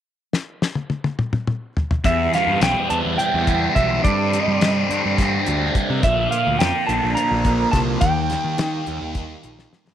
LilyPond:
<<
  \new Staff \with { instrumentName = "Electric slide guitar" } { \time 7/8 \key e \phrygian \tempo 4 = 105 r2. r8 | e''8 f''8 g''8 a''8 g''4 e''8 | d''2 r4. | e''8 f''8 g''8 a''8 bes''4 a''8 |
g''2 r4. | }
  \new Staff \with { instrumentName = "Tonewheel organ" } { \time 7/8 \key e \phrygian << { r2. r8 | b'2.~ b'8 | c''2.~ c''8 | bes'2.~ bes'8 |
bes'2.~ bes'8 | } \\ { r2. r8 | <g g'>2.~ <g g'>8~ | <g g'>2.~ <g g'>8 | <f f'>2.~ <f f'>8 |
<g g'>2.~ <g g'>8 | } >> }
  \new Staff \with { instrumentName = "Tonewheel organ" } { \clef bass \time 7/8 \key e \phrygian << { r2. r8 | b2.~ b8 | c'2.~ c'8 | bes2.~ bes8~ |
bes2.~ bes8 | } \\ { r2. r8 | e2.~ e8 | d2.~ d8~ | d2.~ d8 |
ees2.~ ees8 | } >> }
  \new Staff \with { instrumentName = "Distorted electric guitar" } { \time 7/8 \key e \phrygian r2. r8 | e,8 g8 e'8 b8 g8 b8 e8 | g,8 c'8 g'8 d'8 c'8 d'8 g8 | bes,8 bes8 bes'8 d'8 bes8 d'8 f8 |
ees8 bes8 g'8 ees'8 bes8 ees'8 g8 | }
  \new Staff \with { instrumentName = "Picked electric bass" } { \clef bass \time 7/8 \key e \phrygian r2. r8 | e,8 r16 g,16 b,,16 r16 e,16 e,16 r16 e,8. b,,8 | g,8. g16 g8 g,16 g,8. d,8 r16 c16 | bes,,8 r16 d,16 f,16 r16 bes,,16 bes,,16 r16 bes,,8. c,8 |
ees,8. ees16 ees8 ees,16 ees,8. bes,,8 r16 g,16 | }
  \new DrumStaff \with { instrumentName = "Drums" } \drummode { \time 7/8 r8 sn8 sn16 tommh16 tommh16 tommh16 toml16 toml16 toml8 tomfh16 tomfh16 | <hh bd>8 <hh sn>8 <hh sn>8 hh8 hh8 <hh bd>8 <hh bd>8 | <hh bd>8 hh8 <hh sn>8 hh8 <hh bd sn>8 hh8 <hh bd>8 | <hh bd>8 hh8 <hh sn>8 hh8 hh8 <hh bd>8 <hh bd sn>8 |
<hh bd>8 <hh sn>8 <hh sn>8 hh8 <hh bd>8 hh16 sn16 sn16 sn16 | }
>>